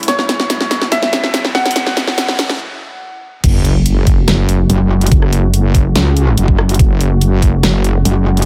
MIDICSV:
0, 0, Header, 1, 8, 480
1, 0, Start_track
1, 0, Key_signature, 3, "minor"
1, 0, Tempo, 419580
1, 93, Time_signature, 4, 2, 24, 8
1, 9671, End_track
2, 0, Start_track
2, 0, Title_t, "Grand piano"
2, 0, Program_c, 0, 0
2, 92, Note_on_c, 0, 73, 96
2, 958, Note_off_c, 0, 73, 0
2, 1052, Note_on_c, 0, 76, 95
2, 1678, Note_off_c, 0, 76, 0
2, 1771, Note_on_c, 0, 78, 97
2, 3838, Note_off_c, 0, 78, 0
2, 9671, End_track
3, 0, Start_track
3, 0, Title_t, "Supersaw synth"
3, 0, Program_c, 1, 81
3, 0, Note_on_c, 1, 45, 78
3, 0, Note_on_c, 1, 54, 70
3, 0, Note_on_c, 1, 56, 68
3, 0, Note_on_c, 1, 61, 69
3, 0, Note_on_c, 1, 64, 87
3, 2926, Note_off_c, 1, 45, 0
3, 2926, Note_off_c, 1, 54, 0
3, 2926, Note_off_c, 1, 56, 0
3, 2926, Note_off_c, 1, 61, 0
3, 2951, Note_off_c, 1, 64, 0
3, 3933, Note_on_c, 1, 54, 73
3, 3933, Note_on_c, 1, 57, 73
3, 3934, Note_on_c, 1, 49, 79
3, 3934, Note_on_c, 1, 56, 72
3, 3934, Note_on_c, 1, 66, 89
3, 9671, Note_off_c, 1, 49, 0
3, 9671, Note_off_c, 1, 54, 0
3, 9671, Note_off_c, 1, 56, 0
3, 9671, Note_off_c, 1, 57, 0
3, 9671, Note_off_c, 1, 66, 0
3, 9671, End_track
4, 0, Start_track
4, 0, Title_t, "Wobble bass"
4, 0, Program_c, 2, 39
4, 3933, Note_on_c, 2, 30, 98
4, 4874, Note_off_c, 2, 30, 0
4, 4893, Note_on_c, 2, 30, 96
4, 5354, Note_off_c, 2, 30, 0
4, 5853, Note_on_c, 2, 30, 96
4, 6794, Note_off_c, 2, 30, 0
4, 7772, Note_on_c, 2, 30, 96
4, 8714, Note_off_c, 2, 30, 0
4, 8733, Note_on_c, 2, 30, 96
4, 9194, Note_off_c, 2, 30, 0
4, 9671, End_track
5, 0, Start_track
5, 0, Title_t, "Wobble bass"
5, 0, Program_c, 3, 39
5, 5372, Note_on_c, 3, 30, 97
5, 5834, Note_off_c, 3, 30, 0
5, 6812, Note_on_c, 3, 37, 99
5, 7273, Note_off_c, 3, 37, 0
5, 7292, Note_on_c, 3, 30, 97
5, 7754, Note_off_c, 3, 30, 0
5, 9213, Note_on_c, 3, 30, 94
5, 9671, Note_off_c, 3, 30, 0
5, 9671, End_track
6, 0, Start_track
6, 0, Title_t, "Riser"
6, 0, Program_c, 4, 103
6, 0, Note_on_c, 4, 60, 81
6, 2973, Note_off_c, 4, 60, 0
6, 9671, End_track
7, 0, Start_track
7, 0, Title_t, "Sub drop"
7, 0, Program_c, 5, 103
7, 3933, Note_on_c, 5, 60, 77
7, 5853, Note_off_c, 5, 60, 0
7, 9671, End_track
8, 0, Start_track
8, 0, Title_t, "Drums"
8, 33, Note_on_c, 9, 42, 67
8, 92, Note_off_c, 9, 42, 0
8, 92, Note_on_c, 9, 38, 91
8, 92, Note_on_c, 9, 42, 83
8, 206, Note_off_c, 9, 38, 0
8, 206, Note_off_c, 9, 42, 0
8, 214, Note_on_c, 9, 38, 79
8, 328, Note_off_c, 9, 38, 0
8, 331, Note_on_c, 9, 38, 92
8, 331, Note_on_c, 9, 42, 53
8, 446, Note_off_c, 9, 38, 0
8, 446, Note_off_c, 9, 42, 0
8, 454, Note_on_c, 9, 38, 83
8, 568, Note_off_c, 9, 38, 0
8, 571, Note_on_c, 9, 38, 91
8, 571, Note_on_c, 9, 42, 83
8, 685, Note_off_c, 9, 38, 0
8, 685, Note_off_c, 9, 42, 0
8, 693, Note_on_c, 9, 38, 83
8, 807, Note_off_c, 9, 38, 0
8, 811, Note_on_c, 9, 38, 92
8, 811, Note_on_c, 9, 42, 54
8, 925, Note_off_c, 9, 38, 0
8, 925, Note_off_c, 9, 42, 0
8, 933, Note_on_c, 9, 38, 85
8, 1047, Note_off_c, 9, 38, 0
8, 1050, Note_on_c, 9, 38, 95
8, 1050, Note_on_c, 9, 42, 81
8, 1164, Note_off_c, 9, 38, 0
8, 1164, Note_off_c, 9, 42, 0
8, 1173, Note_on_c, 9, 38, 88
8, 1287, Note_off_c, 9, 38, 0
8, 1291, Note_on_c, 9, 38, 99
8, 1291, Note_on_c, 9, 42, 54
8, 1405, Note_off_c, 9, 38, 0
8, 1405, Note_off_c, 9, 42, 0
8, 1414, Note_on_c, 9, 38, 85
8, 1528, Note_off_c, 9, 38, 0
8, 1530, Note_on_c, 9, 38, 100
8, 1530, Note_on_c, 9, 42, 83
8, 1645, Note_off_c, 9, 38, 0
8, 1645, Note_off_c, 9, 42, 0
8, 1654, Note_on_c, 9, 38, 87
8, 1768, Note_off_c, 9, 38, 0
8, 1771, Note_on_c, 9, 38, 101
8, 1885, Note_off_c, 9, 38, 0
8, 1894, Note_on_c, 9, 38, 93
8, 1894, Note_on_c, 9, 42, 51
8, 1953, Note_off_c, 9, 42, 0
8, 1953, Note_on_c, 9, 42, 68
8, 2008, Note_off_c, 9, 38, 0
8, 2011, Note_off_c, 9, 42, 0
8, 2011, Note_on_c, 9, 38, 102
8, 2011, Note_on_c, 9, 42, 88
8, 2126, Note_off_c, 9, 38, 0
8, 2126, Note_off_c, 9, 42, 0
8, 2134, Note_on_c, 9, 38, 90
8, 2248, Note_off_c, 9, 38, 0
8, 2252, Note_on_c, 9, 38, 101
8, 2252, Note_on_c, 9, 42, 54
8, 2366, Note_off_c, 9, 38, 0
8, 2366, Note_off_c, 9, 42, 0
8, 2374, Note_on_c, 9, 38, 91
8, 2488, Note_off_c, 9, 38, 0
8, 2491, Note_on_c, 9, 38, 104
8, 2491, Note_on_c, 9, 42, 84
8, 2606, Note_off_c, 9, 38, 0
8, 2606, Note_off_c, 9, 42, 0
8, 2614, Note_on_c, 9, 38, 91
8, 2728, Note_off_c, 9, 38, 0
8, 2732, Note_on_c, 9, 38, 105
8, 2732, Note_on_c, 9, 42, 55
8, 2846, Note_off_c, 9, 38, 0
8, 2846, Note_off_c, 9, 42, 0
8, 2854, Note_on_c, 9, 38, 94
8, 2969, Note_off_c, 9, 38, 0
8, 3932, Note_on_c, 9, 36, 120
8, 3932, Note_on_c, 9, 42, 84
8, 3932, Note_on_c, 9, 49, 108
8, 4047, Note_off_c, 9, 36, 0
8, 4047, Note_off_c, 9, 42, 0
8, 4047, Note_off_c, 9, 49, 0
8, 4172, Note_on_c, 9, 42, 54
8, 4286, Note_off_c, 9, 42, 0
8, 4412, Note_on_c, 9, 42, 83
8, 4527, Note_off_c, 9, 42, 0
8, 4652, Note_on_c, 9, 36, 62
8, 4653, Note_on_c, 9, 42, 54
8, 4767, Note_off_c, 9, 36, 0
8, 4767, Note_off_c, 9, 42, 0
8, 4893, Note_on_c, 9, 37, 51
8, 4893, Note_on_c, 9, 38, 120
8, 4893, Note_on_c, 9, 42, 81
8, 5008, Note_off_c, 9, 37, 0
8, 5008, Note_off_c, 9, 38, 0
8, 5008, Note_off_c, 9, 42, 0
8, 5133, Note_on_c, 9, 42, 57
8, 5248, Note_off_c, 9, 42, 0
8, 5373, Note_on_c, 9, 42, 82
8, 5487, Note_off_c, 9, 42, 0
8, 5735, Note_on_c, 9, 42, 54
8, 5794, Note_off_c, 9, 42, 0
8, 5794, Note_on_c, 9, 42, 70
8, 5852, Note_on_c, 9, 36, 121
8, 5853, Note_off_c, 9, 42, 0
8, 5853, Note_on_c, 9, 42, 81
8, 5967, Note_off_c, 9, 36, 0
8, 5967, Note_off_c, 9, 42, 0
8, 5975, Note_on_c, 9, 37, 58
8, 6090, Note_off_c, 9, 37, 0
8, 6093, Note_on_c, 9, 42, 53
8, 6207, Note_off_c, 9, 42, 0
8, 6333, Note_on_c, 9, 42, 78
8, 6447, Note_off_c, 9, 42, 0
8, 6572, Note_on_c, 9, 36, 64
8, 6573, Note_on_c, 9, 42, 54
8, 6687, Note_off_c, 9, 36, 0
8, 6688, Note_off_c, 9, 42, 0
8, 6813, Note_on_c, 9, 38, 122
8, 6813, Note_on_c, 9, 42, 81
8, 6927, Note_off_c, 9, 38, 0
8, 6927, Note_off_c, 9, 42, 0
8, 7053, Note_on_c, 9, 42, 54
8, 7168, Note_off_c, 9, 42, 0
8, 7293, Note_on_c, 9, 42, 80
8, 7408, Note_off_c, 9, 42, 0
8, 7415, Note_on_c, 9, 36, 64
8, 7529, Note_off_c, 9, 36, 0
8, 7533, Note_on_c, 9, 37, 78
8, 7648, Note_off_c, 9, 37, 0
8, 7656, Note_on_c, 9, 42, 51
8, 7715, Note_off_c, 9, 42, 0
8, 7715, Note_on_c, 9, 42, 67
8, 7772, Note_on_c, 9, 36, 127
8, 7774, Note_off_c, 9, 42, 0
8, 7774, Note_on_c, 9, 42, 80
8, 7887, Note_off_c, 9, 36, 0
8, 7888, Note_off_c, 9, 42, 0
8, 8014, Note_on_c, 9, 42, 51
8, 8128, Note_off_c, 9, 42, 0
8, 8253, Note_on_c, 9, 42, 79
8, 8367, Note_off_c, 9, 42, 0
8, 8492, Note_on_c, 9, 36, 67
8, 8493, Note_on_c, 9, 42, 51
8, 8607, Note_off_c, 9, 36, 0
8, 8608, Note_off_c, 9, 42, 0
8, 8733, Note_on_c, 9, 37, 52
8, 8733, Note_on_c, 9, 38, 125
8, 8733, Note_on_c, 9, 42, 76
8, 8847, Note_off_c, 9, 37, 0
8, 8847, Note_off_c, 9, 38, 0
8, 8847, Note_off_c, 9, 42, 0
8, 8973, Note_on_c, 9, 42, 53
8, 9088, Note_off_c, 9, 42, 0
8, 9213, Note_on_c, 9, 42, 76
8, 9327, Note_off_c, 9, 42, 0
8, 9576, Note_on_c, 9, 42, 51
8, 9635, Note_off_c, 9, 42, 0
8, 9635, Note_on_c, 9, 42, 66
8, 9671, Note_off_c, 9, 42, 0
8, 9671, End_track
0, 0, End_of_file